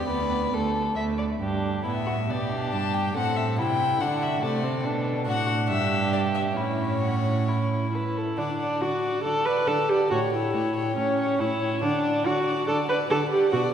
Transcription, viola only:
0, 0, Header, 1, 2, 480
1, 0, Start_track
1, 0, Key_signature, 1, "major"
1, 0, Tempo, 442152
1, 1526, Time_signature, 4, 2, 24, 8
1, 2481, Tempo, 426439
1, 5360, Key_signature, 2, "major"
1, 6801, Tempo, 449775
1, 9201, Tempo, 434153
1, 11121, Tempo, 427046
1, 15199, End_track
2, 0, Start_track
2, 0, Title_t, "Viola"
2, 0, Program_c, 0, 41
2, 97, Note_on_c, 0, 59, 36
2, 324, Note_off_c, 0, 59, 0
2, 336, Note_on_c, 0, 59, 31
2, 566, Note_off_c, 0, 59, 0
2, 578, Note_on_c, 0, 57, 36
2, 808, Note_off_c, 0, 57, 0
2, 822, Note_on_c, 0, 57, 33
2, 1051, Note_off_c, 0, 57, 0
2, 1056, Note_on_c, 0, 57, 35
2, 1287, Note_off_c, 0, 57, 0
2, 1300, Note_on_c, 0, 57, 30
2, 1520, Note_off_c, 0, 57, 0
2, 1526, Note_on_c, 0, 62, 37
2, 1973, Note_off_c, 0, 62, 0
2, 2010, Note_on_c, 0, 59, 38
2, 2474, Note_off_c, 0, 59, 0
2, 2485, Note_on_c, 0, 59, 37
2, 2575, Note_off_c, 0, 59, 0
2, 2723, Note_on_c, 0, 62, 39
2, 3462, Note_on_c, 0, 60, 39
2, 3479, Note_off_c, 0, 62, 0
2, 3944, Note_on_c, 0, 64, 42
2, 3960, Note_off_c, 0, 60, 0
2, 4419, Note_on_c, 0, 62, 44
2, 4436, Note_off_c, 0, 64, 0
2, 4871, Note_off_c, 0, 62, 0
2, 4878, Note_on_c, 0, 57, 51
2, 5119, Note_on_c, 0, 60, 48
2, 5136, Note_off_c, 0, 57, 0
2, 5363, Note_on_c, 0, 62, 48
2, 5380, Note_off_c, 0, 60, 0
2, 5836, Note_off_c, 0, 62, 0
2, 5844, Note_on_c, 0, 62, 54
2, 7251, Note_off_c, 0, 62, 0
2, 7285, Note_on_c, 0, 61, 41
2, 8701, Note_off_c, 0, 61, 0
2, 8717, Note_on_c, 0, 64, 47
2, 9205, Note_on_c, 0, 62, 50
2, 9222, Note_off_c, 0, 64, 0
2, 9684, Note_on_c, 0, 66, 53
2, 9700, Note_off_c, 0, 62, 0
2, 10147, Note_off_c, 0, 66, 0
2, 10154, Note_on_c, 0, 69, 61
2, 10395, Note_on_c, 0, 71, 58
2, 10412, Note_off_c, 0, 69, 0
2, 10639, Note_on_c, 0, 69, 59
2, 10655, Note_off_c, 0, 71, 0
2, 10881, Note_on_c, 0, 67, 54
2, 10897, Note_off_c, 0, 69, 0
2, 11107, Note_off_c, 0, 67, 0
2, 11113, Note_on_c, 0, 66, 62
2, 11203, Note_off_c, 0, 66, 0
2, 11368, Note_on_c, 0, 64, 50
2, 12074, Note_off_c, 0, 64, 0
2, 12081, Note_on_c, 0, 61, 52
2, 12569, Note_on_c, 0, 64, 61
2, 12586, Note_off_c, 0, 61, 0
2, 13041, Note_off_c, 0, 64, 0
2, 13048, Note_on_c, 0, 62, 58
2, 13537, Note_on_c, 0, 66, 60
2, 13554, Note_off_c, 0, 62, 0
2, 14001, Note_off_c, 0, 66, 0
2, 14007, Note_on_c, 0, 69, 65
2, 14097, Note_off_c, 0, 69, 0
2, 14249, Note_on_c, 0, 71, 66
2, 14339, Note_off_c, 0, 71, 0
2, 14486, Note_on_c, 0, 69, 67
2, 14576, Note_off_c, 0, 69, 0
2, 14718, Note_on_c, 0, 67, 63
2, 14948, Note_off_c, 0, 67, 0
2, 14955, Note_on_c, 0, 66, 64
2, 15045, Note_off_c, 0, 66, 0
2, 15199, End_track
0, 0, End_of_file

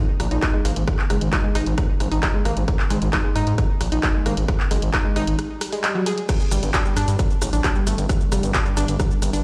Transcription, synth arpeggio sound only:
0, 0, Header, 1, 2, 480
1, 0, Start_track
1, 0, Key_signature, -2, "minor"
1, 0, Tempo, 451128
1, 932, Time_signature, 4, 2, 24, 8
1, 10042, End_track
2, 0, Start_track
2, 0, Title_t, "Synth arpeggio sound"
2, 0, Program_c, 0, 84
2, 331, Note_on_c, 0, 63, 76
2, 403, Note_off_c, 0, 63, 0
2, 451, Note_on_c, 0, 63, 82
2, 494, Note_off_c, 0, 63, 0
2, 572, Note_on_c, 0, 56, 77
2, 643, Note_off_c, 0, 56, 0
2, 691, Note_on_c, 0, 58, 78
2, 763, Note_off_c, 0, 58, 0
2, 1171, Note_on_c, 0, 56, 78
2, 1279, Note_off_c, 0, 56, 0
2, 1412, Note_on_c, 0, 63, 83
2, 1455, Note_off_c, 0, 63, 0
2, 1531, Note_on_c, 0, 56, 79
2, 1603, Note_off_c, 0, 56, 0
2, 1651, Note_on_c, 0, 63, 103
2, 1759, Note_off_c, 0, 63, 0
2, 2251, Note_on_c, 0, 63, 77
2, 2323, Note_off_c, 0, 63, 0
2, 2371, Note_on_c, 0, 63, 85
2, 2415, Note_off_c, 0, 63, 0
2, 2491, Note_on_c, 0, 56, 79
2, 2563, Note_off_c, 0, 56, 0
2, 2611, Note_on_c, 0, 58, 79
2, 2683, Note_off_c, 0, 58, 0
2, 3091, Note_on_c, 0, 56, 80
2, 3199, Note_off_c, 0, 56, 0
2, 3332, Note_on_c, 0, 63, 87
2, 3375, Note_off_c, 0, 63, 0
2, 3451, Note_on_c, 0, 56, 77
2, 3523, Note_off_c, 0, 56, 0
2, 3572, Note_on_c, 0, 63, 104
2, 3679, Note_off_c, 0, 63, 0
2, 4171, Note_on_c, 0, 63, 75
2, 4243, Note_off_c, 0, 63, 0
2, 4291, Note_on_c, 0, 63, 81
2, 4335, Note_off_c, 0, 63, 0
2, 4412, Note_on_c, 0, 56, 78
2, 4483, Note_off_c, 0, 56, 0
2, 4531, Note_on_c, 0, 58, 78
2, 4603, Note_off_c, 0, 58, 0
2, 5011, Note_on_c, 0, 56, 78
2, 5119, Note_off_c, 0, 56, 0
2, 5251, Note_on_c, 0, 63, 86
2, 5295, Note_off_c, 0, 63, 0
2, 5372, Note_on_c, 0, 56, 79
2, 5443, Note_off_c, 0, 56, 0
2, 5492, Note_on_c, 0, 63, 103
2, 5599, Note_off_c, 0, 63, 0
2, 6092, Note_on_c, 0, 56, 76
2, 6163, Note_off_c, 0, 56, 0
2, 6212, Note_on_c, 0, 56, 80
2, 6319, Note_off_c, 0, 56, 0
2, 6332, Note_on_c, 0, 54, 104
2, 6375, Note_off_c, 0, 54, 0
2, 6452, Note_on_c, 0, 68, 102
2, 6559, Note_off_c, 0, 68, 0
2, 6932, Note_on_c, 0, 55, 79
2, 7039, Note_off_c, 0, 55, 0
2, 7172, Note_on_c, 0, 62, 86
2, 7215, Note_off_c, 0, 62, 0
2, 7292, Note_on_c, 0, 55, 77
2, 7363, Note_off_c, 0, 55, 0
2, 7412, Note_on_c, 0, 62, 102
2, 7519, Note_off_c, 0, 62, 0
2, 8012, Note_on_c, 0, 62, 77
2, 8083, Note_off_c, 0, 62, 0
2, 8131, Note_on_c, 0, 62, 84
2, 8174, Note_off_c, 0, 62, 0
2, 8252, Note_on_c, 0, 55, 79
2, 8323, Note_off_c, 0, 55, 0
2, 8372, Note_on_c, 0, 57, 80
2, 8443, Note_off_c, 0, 57, 0
2, 8852, Note_on_c, 0, 55, 78
2, 8959, Note_off_c, 0, 55, 0
2, 9092, Note_on_c, 0, 62, 87
2, 9135, Note_off_c, 0, 62, 0
2, 9211, Note_on_c, 0, 55, 78
2, 9283, Note_off_c, 0, 55, 0
2, 9331, Note_on_c, 0, 62, 102
2, 9439, Note_off_c, 0, 62, 0
2, 9931, Note_on_c, 0, 62, 79
2, 10003, Note_off_c, 0, 62, 0
2, 10042, End_track
0, 0, End_of_file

